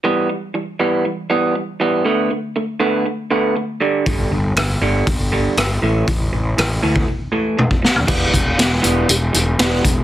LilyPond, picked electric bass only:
\new Staff \with { instrumentName = "Picked electric bass" } { \clef bass \time 4/4 \key e \minor \tempo 4 = 119 r1 | r1 | g,,8 g,,8 g,,8 g,,8 g,,4 g,,8 a,,8 | a,,8 a,,8 a,,8 d,8 r2 |
e,,8 e,,8 e,,8 e,,8 e,,8 e,,8 e,,8 e,,8 | }